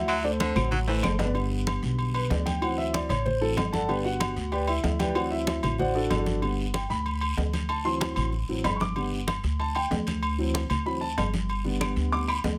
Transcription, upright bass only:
Already playing: D2
0.56 A1
1.04 G1
1.82 B1
2.30 D2
3.09 A1
3.57 G1
4.36 D2
4.84 D2
5.63 A1
6.11 G1
6.90 D2
7.38 D2
8.16 A1
8.48 A1
8.64 G1
9.44 D2
9.91 D2
10.70 D2
11.18 G1
11.96 D2
12.44 D2

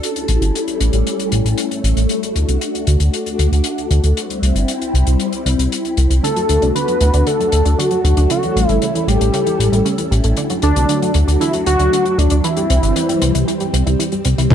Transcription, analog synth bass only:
0.29 A1
0.41 G1
0.80 A1
0.93 A1
1.32 A1
1.45 A1
1.84 A1
1.97 A1
2.36 D2
2.49 C2
2.87 D2
3.00 D2
3.39 D2
3.52 D2
3.91 D2
4.04 D2
4.42 C2
4.55 G1
4.94 C2
5.07 C2
5.46 C2
5.59 C2
5.97 C2
6.10 C2
6.49 D2
6.62 C2
7.01 D2
7.14 D2
7.53 D2
7.65 D2
8.04 D2
8.17 D2
8.56 A1
8.69 G1
9.08 A1
9.21 A1
9.59 A1
9.72 A1
10.11 A1
10.24 A1
10.63 D2
10.76 C2
11.15 D2
11.28 D2
11.67 D2
11.79 D2
12.18 D2
12.31 D2
12.70 C2
12.83 G1
13.22 C2
13.35 C2
13.74 C2
13.87 C2
14.25 C2
14.38 C2

